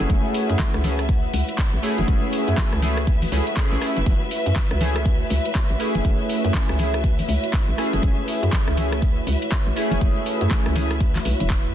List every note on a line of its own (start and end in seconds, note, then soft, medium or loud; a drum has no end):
0.00 0.81 A3 medium
0.00 11.75 A3 medium
0.00 0.82 C#4 medium
0.00 0.82 E4 medium
0.00 11.75 E4 medium
0.00 11.75 F#4 medium
0.00 0.82 G#4 medium
0.00 11.75 B4 medium
0.00 11.75 C#5 medium
0.00 11.75 E5 medium
0.00 4.05 F#5 loud
0.10 0.19 F#1 loud
0.10 kick loud
0.10 closed hi-hat medium
0.10 high conga medium
0.34 open hi-hat loud
0.50 0.55 F#2 loud
0.50 closed hi-hat soft
0.59 kick loud
0.59 clap loud
0.59 closed hi-hat medium
0.59 low conga medium
0.74 1.28 C#2 loud
0.74 cross-stick medium
0.74 high conga medium
0.84 1.02 A3 medium
0.84 1.02 C#4 medium
0.84 1.02 E4 medium
0.84 1.02 G#4 medium
0.84 open hi-hat loud
0.84 low conga medium
0.99 cross-stick medium
0.99 closed hi-hat medium
1.09 kick loud
1.09 closed hi-hat medium
1.34 1.43 C#2 medium
1.34 open hi-hat loud
1.34 high conga loud
1.49 closed hi-hat medium
1.58 kick loud
1.58 clap loud
1.58 closed hi-hat medium
1.74 1.79 A1 medium
1.82 2.80 A3 medium
1.82 2.80 C#4 medium
1.82 2.80 E4 medium
1.82 2.81 G#4 medium
1.82 open hi-hat loud
1.98 2.04 F#1 medium
1.98 closed hi-hat soft
1.98 low conga medium
2.08 2.17 F#1 loud
2.08 kick loud
2.08 closed hi-hat medium
2.08 high conga loud
2.33 open hi-hat loud
2.48 2.54 F#2 loud
2.48 closed hi-hat soft
2.58 kick loud
2.58 clap loud
2.58 closed hi-hat medium
2.58 low conga medium
2.73 3.26 C#2 loud
2.73 cross-stick medium
2.73 high conga medium
2.82 3.00 A3 medium
2.82 3.00 C#4 medium
2.82 3.01 E4 medium
2.82 3.01 G#4 medium
2.82 open hi-hat loud
2.82 low conga medium
2.97 cross-stick medium
2.97 closed hi-hat soft
3.07 kick loud
3.07 closed hi-hat medium
3.22 open hi-hat medium
3.22 low conga medium
3.32 3.41 C#2 medium
3.32 3.44 A3 medium
3.32 3.44 C#4 medium
3.32 3.44 E4 medium
3.32 3.45 G#4 medium
3.32 open hi-hat loud
3.32 high conga medium
3.47 closed hi-hat medium
3.56 3.69 A3 medium
3.56 3.70 C#4 medium
3.56 3.70 E4 medium
3.56 3.70 G#4 loud
3.56 kick loud
3.56 clap loud
3.56 closed hi-hat medium
3.71 3.78 A1 medium
3.71 3.79 A3 medium
3.71 3.79 C#4 medium
3.71 3.79 E4 medium
3.71 3.80 G#4 loud
3.81 4.00 A3 medium
3.81 4.00 C#4 medium
3.81 4.00 E4 medium
3.81 4.00 G#4 medium
3.81 cross-stick medium
3.81 open hi-hat loud
3.96 4.03 F#1 medium
3.96 closed hi-hat soft
4.06 4.16 F#1 loud
4.06 11.75 E5 medium
4.06 kick loud
4.06 closed hi-hat medium
4.06 high conga medium
4.31 open hi-hat loud
4.46 4.52 F#2 loud
4.46 closed hi-hat soft
4.56 kick loud
4.56 clap loud
4.56 closed hi-hat medium
4.56 low conga medium
4.71 5.24 C#2 loud
4.71 cross-stick medium
4.71 high conga medium
4.80 4.99 A3 medium
4.80 4.99 C#4 medium
4.80 4.99 E4 medium
4.80 4.99 G#4 medium
4.80 open hi-hat loud
4.80 low conga medium
4.96 cross-stick medium
4.96 closed hi-hat medium
5.06 kick loud
5.06 closed hi-hat medium
5.30 5.40 C#2 medium
5.30 open hi-hat loud
5.30 high conga medium
5.45 closed hi-hat medium
5.55 kick loud
5.55 clap loud
5.55 closed hi-hat medium
5.70 5.76 A1 medium
5.79 6.76 A3 medium
5.79 6.77 C#4 medium
5.79 6.77 E4 medium
5.79 6.77 G#4 medium
5.79 open hi-hat loud
5.95 6.01 F#1 medium
5.95 closed hi-hat soft
5.95 low conga medium
6.05 6.14 F#1 loud
6.05 kick loud
6.05 closed hi-hat medium
6.05 high conga medium
6.30 open hi-hat loud
6.45 6.51 F#2 loud
6.45 closed hi-hat soft
6.54 kick loud
6.54 clap loud
6.54 closed hi-hat medium
6.54 low conga medium
6.69 7.23 C#2 medium
6.69 cross-stick medium
6.69 high conga medium
6.79 6.97 A3 medium
6.79 6.97 C#4 medium
6.79 6.97 E4 medium
6.79 6.97 G#4 medium
6.79 open hi-hat loud
6.79 low conga medium
6.94 cross-stick medium
6.94 closed hi-hat medium
7.04 kick loud
7.04 closed hi-hat medium
7.19 open hi-hat medium
7.19 low conga medium
7.28 7.38 C#2 medium
7.28 open hi-hat loud
7.28 high conga medium
7.44 closed hi-hat medium
7.53 kick loud
7.53 clap loud
7.53 closed hi-hat medium
7.69 7.74 A1 medium
7.77 8.75 A3 medium
7.77 8.75 C#4 medium
7.77 8.75 E4 medium
7.77 8.76 G#4 medium
7.77 cross-stick medium
7.77 open hi-hat loud
7.93 7.99 F#1 medium
7.93 closed hi-hat soft
8.03 8.12 F#1 loud
8.03 kick loud
8.03 closed hi-hat medium
8.03 high conga medium
8.28 open hi-hat loud
8.43 8.49 F#2 loud
8.43 closed hi-hat medium
8.53 kick loud
8.53 clap loud
8.53 closed hi-hat medium
8.53 low conga medium
8.67 9.21 C#2 medium
8.67 cross-stick medium
8.67 high conga medium
8.77 8.95 A3 medium
8.77 8.95 C#4 medium
8.77 8.96 E4 medium
8.77 8.96 G#4 medium
8.77 open hi-hat loud
8.77 low conga medium
8.92 cross-stick medium
8.92 closed hi-hat medium
9.02 kick loud
9.02 closed hi-hat medium
9.27 9.36 C#2 medium
9.27 open hi-hat loud
9.27 high conga medium
9.42 closed hi-hat medium
9.52 kick loud
9.52 clap loud
9.52 closed hi-hat medium
9.67 9.73 A1 medium
9.76 10.73 A3 medium
9.76 10.73 C#4 medium
9.76 10.74 E4 medium
9.76 10.74 G#4 medium
9.76 open hi-hat medium
9.91 9.98 F#1 medium
9.91 closed hi-hat soft
9.91 low conga medium
10.01 10.11 F#1 loud
10.01 kick loud
10.01 closed hi-hat medium
10.01 high conga medium
10.26 open hi-hat loud
10.41 10.47 F#2 loud
10.41 closed hi-hat medium
10.51 kick loud
10.51 clap loud
10.51 closed hi-hat medium
10.51 low conga medium
10.66 11.19 C#2 loud
10.66 cross-stick medium
10.66 high conga medium
10.75 10.94 A3 medium
10.75 10.94 C#4 medium
10.75 10.94 E4 medium
10.75 10.94 G#4 medium
10.75 open hi-hat loud
10.75 low conga medium
10.91 cross-stick medium
10.91 closed hi-hat medium
11.00 kick loud
11.00 closed hi-hat medium
11.15 clap soft
11.15 open hi-hat medium
11.15 low conga medium
11.25 11.35 B1 medium
11.25 open hi-hat loud
11.25 high conga medium
11.40 11.67 E1 loud
11.40 closed hi-hat medium
11.50 kick loud
11.50 clap loud
11.50 closed hi-hat medium
11.65 11.75 F#2 medium